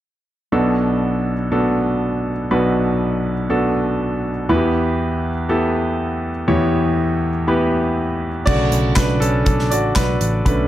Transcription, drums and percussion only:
8.47 kick medium
8.47 crash medium
8.72 closed hi-hat soft
8.96 kick medium
8.96 snare medium
8.96 clap medium
8.96 closed hi-hat medium
9.22 closed hi-hat medium
9.46 kick medium
9.46 closed hi-hat medium
9.59 snare soft
9.72 closed hi-hat medium
9.96 kick medium
9.96 snare medium
9.96 clap medium
9.96 closed hi-hat medium
10.21 closed hi-hat medium
10.46 kick medium
10.46 closed hi-hat medium

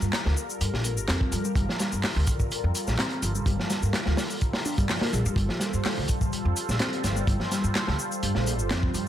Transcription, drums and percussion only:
0.02 shaker soft
0.13 snare loud
0.13 clap loud
0.13 closed hi-hat medium
0.13 shaker soft
0.26 snare medium
0.37 shaker medium
0.50 shaker soft
0.61 closed hi-hat medium
0.61 shaker soft
0.74 snare soft
0.84 closed hi-hat medium
0.84 shaker medium
0.97 shaker soft
1.08 snare loud
1.08 clap loud
1.08 closed hi-hat medium
1.08 shaker soft
1.21 kick medium
1.32 closed hi-hat medium
1.32 shaker medium
1.45 shaker soft
1.55 kick loud
1.55 closed hi-hat medium
1.55 shaker soft
1.69 snare soft
1.79 snare medium
1.79 closed hi-hat medium
1.79 shaker medium
1.92 shaker soft
2.03 snare loud
2.03 clap loud
2.03 open hi-hat medium
2.03 shaker soft
2.27 kick loud
2.27 closed hi-hat medium
2.27 shaker medium
2.40 kick medium
2.40 shaker soft
2.51 closed hi-hat medium
2.51 shaker soft
2.75 closed hi-hat medium
2.75 shaker medium
2.87 snare soft
2.87 shaker soft
2.99 snare loud
2.99 clap loud
2.99 closed hi-hat medium
2.99 shaker soft
3.10 closed hi-hat soft
3.22 closed hi-hat medium
3.22 shaker medium
3.35 shaker soft
3.46 kick loud
3.46 closed hi-hat medium
3.46 shaker soft
3.60 snare soft
3.70 snare medium
3.70 closed hi-hat medium
3.70 shaker medium
3.83 shaker soft
3.93 snare loud
3.93 clap loud
3.93 closed hi-hat medium
3.93 shaker soft
4.06 snare medium
4.17 snare medium
4.17 open hi-hat medium
4.17 shaker medium
4.30 shaker soft
4.41 kick medium
4.41 closed hi-hat medium
4.41 shaker soft
4.53 snare loud
4.53 open hi-hat medium
4.65 shaker medium
4.78 kick medium
4.78 closed hi-hat medium
4.78 shaker soft
4.89 snare loud
4.89 clap loud
4.89 open hi-hat medium
4.89 shaker soft
5.01 snare loud
5.01 open hi-hat medium
5.13 closed hi-hat medium
5.13 shaker medium
5.26 shaker soft
5.36 kick loud
5.36 closed hi-hat medium
5.36 shaker soft
5.49 snare soft
5.60 snare medium
5.60 closed hi-hat medium
5.60 shaker medium
5.73 shaker soft
5.85 snare loud
5.85 clap loud
5.85 open hi-hat medium
5.85 shaker soft
6.08 kick medium
6.08 closed hi-hat medium
6.08 shaker medium
6.21 kick loud
6.21 shaker soft
6.33 closed hi-hat medium
6.33 shaker soft
6.56 closed hi-hat medium
6.56 shaker medium
6.69 snare soft
6.69 shaker soft
6.79 snare loud
6.79 clap loud
6.79 closed hi-hat medium
6.79 shaker soft
6.93 closed hi-hat soft
7.04 snare medium
7.04 closed hi-hat medium
7.04 shaker medium
7.17 shaker soft
7.27 kick loud
7.27 closed hi-hat medium
7.27 shaker soft
7.40 snare soft
7.52 snare soft
7.52 closed hi-hat medium
7.52 shaker medium
7.64 shaker soft
7.75 snare loud
7.75 clap loud
7.75 closed hi-hat loud
7.75 shaker soft
7.88 snare medium
7.99 shaker medium
8.12 shaker soft
8.23 closed hi-hat medium
8.23 shaker soft
8.35 snare soft
8.47 closed hi-hat medium
8.47 shaker medium
8.59 shaker soft
8.71 snare loud
8.71 clap loud
8.71 closed hi-hat medium
8.71 shaker soft
8.83 kick medium
8.94 closed hi-hat medium
8.94 shaker medium

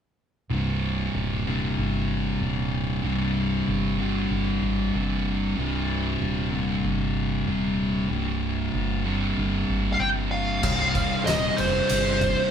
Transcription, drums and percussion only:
10.63 kick loud
10.63 crash loud
10.95 kick medium
10.95 ride medium
11.27 snare loud
11.27 ride medium
11.58 ride medium
11.89 ride loud
12.21 kick medium
12.21 ride medium

